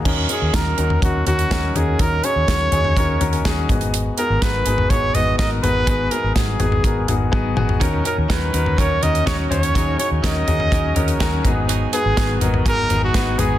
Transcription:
<<
  \new Staff \with { instrumentName = "Trumpet" } { \time 4/4 \key dis \minor \tempo 4 = 124 r8 gis'8 ais'4 fis'8 fis'4 gis'8 | ais'8 cis''2. r8 | r8 ais'8 b'4 cis''8 dis''8 dis''8 b'8~ | b'8 ais'8 gis'2 r4 |
r8 ais'8 b'4 cis''8 dis''8 cis''8 cis''8~ | cis''8 cis''8 dis''2 r4 | r8 gis'4 r8 ais'8. fis'8. gis'8 | }
  \new Staff \with { instrumentName = "Grand piano" } { \time 4/4 \key dis \minor << { r1 | r2 r8 ais''16 gis''16 fis''8 dis''8 | r1 | r1 |
r1 | r1 | r1 | } \\ { <cis' dis' fis' ais'>8 <cis' dis' fis' ais'>8 <cis' dis' fis' ais'>8 <cis' dis' fis' ais'>8 <cis' dis' fis' ais'>8 <cis' dis' fis' ais'>8 <cis' dis' fis' ais'>8 <cis' dis' fis' ais'>8 | <cis' dis' fis' ais'>8 <cis' dis' fis' gis'>8 <cis' dis' fis' ais'>8 <cis' dis' fis' gis'>8 <cis' dis' fis' ais'>8 <cis' dis' fis' ais'>8 <cis' dis' fis' gis'>8 <b dis' fis' gis'>8~ | <b dis' fis' gis'>8 <b dis' fis' gis'>8 <b dis' fis' ais'>8 <b dis' fis' gis'>8 <b dis' fis' gis'>8 <b dis' fis' b'>8 <b dis' fis' ais'>8 <b dis' fis' gis'>8 | <b dis' fis' gis'>8 <b dis' fis' gis'>8 <b dis' fis' gis'>8 <b dis' fis' gis'>8 <b dis' fis' ais'>8 <b dis' fis' gis'>8 <b dis' fis' gis'>8 <b dis' fis' gis'>8 |
<cis' dis' fis' ais'>8 <cis' dis' fis' ais'>8 <cis' dis' fis' cis''>8 <cis' dis' fis' ais'>8 <cis' dis' fis' ais'>8 <cis' dis' fis' ais'>8 <cis' dis' fis' cis''>8 <cis' dis' fis' cis''>8 | <cis' dis' fis' gis'>8 <cis' dis' fis' cis''>8 <cis' dis' fis' ais'>8 <cis' dis' fis' gis'>8 <cis' dis' fis' gis'>8 <cis' dis' fis' ais'>8 <cis' dis' fis' ais'>8 <b dis' fis' gis'>8~ | <b dis' fis' gis'>8 <b dis' fis' b'>8 <b dis' fis' b'>8 <b dis' fis' ais'>8 <b dis' fis' gis'>8 <b dis' fis' gis'>8 <b dis' fis' b'>8 <b dis' fis' gis'>8 | } >> }
  \new Staff \with { instrumentName = "Grand piano" } { \clef bass \time 4/4 \key dis \minor dis4. r2 r8 | dis4. r2 gis,8~ | gis,4 r2 r8 gis,8~ | gis,4 r2. |
dis4. r2 r8 | dis4. r2 gis,8~ | gis,4 r2 r8 gis,8 | }
  \new Staff \with { instrumentName = "Clean electric guitar" } { \time 4/4 \key dis \minor r1 | r1 | r1 | r1 |
<dis fis cis' dis' ais'>8 <cis' dis' ais'>8 <dis fis cis' dis' ais'>8 <cis' dis' ais'>8 <fis cis' dis' ais'>8 <cis' dis' ais'>8 <dis fis cis' dis' ais'>8 <cis' dis' ais'>8 | <dis fis cis' dis' ais'>8 <cis' dis' ais'>8 <dis fis cis' dis' ais'>8 <cis' dis' ais'>8 <fis cis' dis' ais'>8 <cis' dis' ais'>8 <dis fis cis' dis' ais'>8 <fis b dis' gis'>8 | <gis, dis fis b dis' gis'>8 <fis b dis' gis'>8 <gis, dis fis b dis' gis'>8 <fis b dis' gis'>8 <fis b dis' gis'>8 <fis b dis' gis'>8 <gis, dis fis b dis' gis'>8 <fis b dis' gis'>8 | }
  \new Staff \with { instrumentName = "Fingered electric bass" } { \clef bass \time 4/4 \key dis \minor dis,8 r16 dis,16 dis,8 dis,8 dis,8 dis,8 dis,8 dis,8 | dis,8 r16 dis,16 r8 dis,8 r8 dis,8 dis,8 gis,,8~ | gis,,8 r16 gis,,16 r8 gis,,8 gis,,8 gis,,8 gis,,8 gis,,8 | gis,,8 r16 gis,,16 r8 gis,,8 gis,,8 gis,,8 r8 gis,,8 |
dis,8 r16 dis,16 r8 dis,8 dis,8 dis,8 dis,8 dis,8 | dis,8 r16 dis,16 r8 dis,8 dis,8 dis,8 dis,8 gis,,8~ | gis,,8 r16 gis,,16 gis,,8 gis,,8 gis,,8 gis,,8 gis,,8 gis,,8 | }
  \new DrumStaff \with { instrumentName = "Drums" } \drummode { \time 4/4 <cymc bd>8 hh8 <hh bd sn>8 hh16 tomfh16 <hh bd>8 <hh tomfh>16 hh16 <hh bd sn>8 <hh tomfh>8 | <hh bd>8 hh8 <hh bd sn>8 <hh tomfh>16 tomfh16 <hh bd>8 <hh tomfh>16 hh16 <hh bd sn>8 <hh bd tomfh>16 hh16 | hh8 hh8 <hh bd sn>8 hh16 tomfh16 <hh bd>8 <hh tomfh>8 <hh bd sn>8 <hh tomfh>8 | <hh bd>8 hh8 <hh bd sn>8 <hh tomfh>16 tomfh16 <hh bd>8 <hh tomfh>8 <bd tommh>8 toml16 tomfh16 |
<hh bd>8 hh8 <hh bd sn>8 hh16 tomfh16 <hh bd>8 <hh tomfh>16 hh16 <hh bd sn>8 <hh tomfh>16 hh16 | <hh bd>8 hh8 <hh bd sn>8 <hh tomfh>16 tomfh16 <hh bd>8 <hh tomfh>16 hh16 <hh bd sn>8 <hh bd tomfh>8 | hh8 hh8 <hh bd sn>8 <hh tomfh>16 tomfh16 <hh bd>8 <hh tomfh>8 <hh bd sn>8 <hh tomfh>8 | }
>>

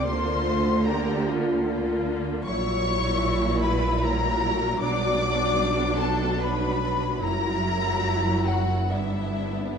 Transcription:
<<
  \new Staff \with { instrumentName = "Violin section" } { \time 3/4 \key bes \major \tempo 4 = 75 c'''4 bes''8 r4. | \key fis \phrygian cis'''4. b''8 ais''4 | d'''4. a''8 b''4 | ais''4. fis''8 e''4 | }
  \new Staff \with { instrumentName = "Violin section" } { \time 3/4 \key bes \major c''4 bes'8 r4. | \key fis \phrygian cis''4. b'8 ais'4 | d''4. a'8 b'4 | ais'4. fis'8 e'4 | }
  \new Staff \with { instrumentName = "Viola section" } { \time 3/4 \key bes \major << { f'4 g'8 f'8 f'4 | \key fis \phrygian e'2. | d'2. | e'2 d'4 | } \\ { bes8 a8 bes4 bes4 | fis2.~ | fis2. | fis2 b4 | } >> }
  \new Staff \with { instrumentName = "Cello section" } { \clef bass \time 3/4 \key bes \major d2. | \key fis \phrygian ais,2. | b,2. | fis,2 g,4 | }
  \new Staff \with { instrumentName = "Double bass section" } { \clef bass \time 3/4 \key bes \major d,2. | \key fis \phrygian ais,,2. | b,,2. | fis,,2 g,,4 | }
>>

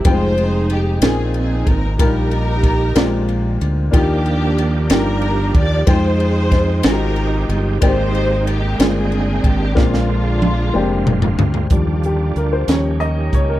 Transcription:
<<
  \new Staff \with { instrumentName = "String section" } { \time 6/8 \key ees \major \tempo 4. = 62 << { c''4 g'8 aes'8 aes'8 bes'8 | bes'2~ bes'8 r8 | g'4. bes'4 d''8 | c''4. bes'4 r8 |
c''4 g'8 aes'4 g'8 | f'2~ f'8 r8 | r2. | } \\ { <ees' aes'>4. <c' ees'>4. | <ees' g'>2~ <ees' g'>8 r8 | <bes d'>4. <d' g'>4. | <ees' aes'>4. <ees' g'>4. |
<ees' g'>4. <c' d'>4. | <aes d'>2~ <aes d'>8 r8 | r2. | } >> }
  \new Staff \with { instrumentName = "French horn section" } { \time 6/8 \key ees \major r2. | r2. | r2. | r2. |
r2. | r2. | <bes d' f' g'>4. <des' ees' bes'>4. | }
  \new Staff \with { instrumentName = "Upright piano" } { \time 6/8 \key ees \major <g aes c' ees' f' g''>4. <bes c' ees' f' aes'>4. | <g bes ees' g' bes'>4. <aes bes c' f' d''>4. | <bes d' f' g'>4. <ees bes d' f' g'>4. | <aes c' ees' f' g''>4. <aes c' ees' f' ges' g'>4. |
<aes bes c' g' d''>4. <aes bes c' d' f'>4. | <aes bes c' d' f'>4. <aes bes c' d' g'>4. | r8 g'8 bes'16 c''16 des''8 ees''8 des''16 bes'16 | }
  \new Staff \with { instrumentName = "Upright piano" } { \clef bass \time 6/8 \key ees \major r4. bes,4. | bes,4. bes,4. | ees4. r4. | r2. |
aes,4. r4. | bes,4. r4. | <f g d'>4. <f g des'>8 r4 | }
  \new Staff \with { instrumentName = "Tonewheel organ" } { \time 6/8 \key ees \major r2. | r2. | <ees f bes d' f' g'>2. | <f g aes c' ees' g''>2. |
<ees aes bes c' ges' g''>2. | <d aes bes c' f'>2. | <d g d' f'>4. <ees bes des' f' g'>4. | }
  \new Staff \with { instrumentName = "Fingered electric bass" } { \clef bass \time 6/8 \key ees \major f,,4. bes,,4 aes,,8 | bes,,4. bes,,4 d,8 | ees,4. g,,4 ees,8 | f,4. aes,,4 g,,8 |
aes,,4. g,,4 aes,,8 | bes,,4. f,,4 d,8 | ees,4 d,8 ees,4 des,8 | }
  \new DrumStaff \with { instrumentName = "Drums" } \drummode { \time 6/8 <bd rb>8 rb8 rb8 <rb sn>8 rb8 <bd rb>8 | <bd rb>8 rb8 <bd rb>8 <rb sn>8 rb8 rb8 | <bd rb>8 rb8 rb8 <rb sn>8 rb8 <bd rb>8 | <bd rb>8 rb8 <bd rb sn>8 <rb sn>8 rb8 rb8 |
<bd rb>8 rb8 rb8 <rb sn>8 rb8 <bd rb>8 | <bd sn>16 sn8. tommh8 r8 toml16 tomfh16 tomfh16 tomfh16 | <hh bd>8 hh8 hh8 <hh sn>8 hh8 <hh bd>8 | }
>>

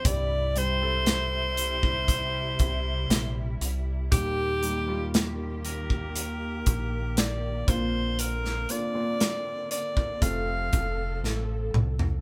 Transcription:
<<
  \new Staff \with { instrumentName = "Alto saxophone" } { \time 4/4 \key c \mixolydian \tempo 4 = 59 d''8 c''2. r8 | g'4 r8 bes'4. d''8 c''8 | bes'8 d''4 d''8 f''4 r4 | }
  \new Staff \with { instrumentName = "Grand piano" } { \time 4/4 \key c \mixolydian <g c' e' g'>8 <g c' e' g'>16 <g c' e' a'>2 r4 r16 | <g bes ees' g'>8 <g bes ees' g'>16 <g bes ees' f'>2 r8. <bes c' d' f'>8~ | <bes c' d' f'>8 <bes c' d' f'>16 <bes c' d' f'>4~ <bes c' d' f'>16 <a c' f' a'>2 | }
  \new Staff \with { instrumentName = "Grand piano" } { \clef bass \time 4/4 \key c \mixolydian g,4. r2 r8 | bes,4. r2 r8 | r2 c4. r8 | }
  \new Staff \with { instrumentName = "String section" } { \clef bass \time 4/4 \key c \mixolydian << { <c e'>1 | <ees g'>2.~ <ees g'>8 <d c'>8~ | <d c'>2 <f a'>2 | } \\ { g1 | bes1~ | bes2 r2 | } >> }
  \new Staff \with { instrumentName = "Fingered electric bass" } { \clef bass \time 4/4 \key c \mixolydian c,2~ c,8 c,8 bes,,8 c,8 | ees,2~ ees,8 bes,,4 bes,,8~ | bes,,8 r4. f,,8 f,,8 a,,8 c,8 | }
  \new DrumStaff \with { instrumentName = "Drums" } \drummode { \time 4/4 <hh bd>8 hh8 <hh sn>8 hh16 bd16 <hh bd>8 <hh bd>8 <hh sn>8 hh8 | <hh bd>8 hh8 <hh sn>8 hh16 bd16 hh8 <hh bd>8 <hh sn>8 <hh bd>8 | hh16 sn16 hh8 <hh sn>8 hh16 bd16 <hh bd>8 <hh bd>8 sn8 toml16 tomfh16 | }
>>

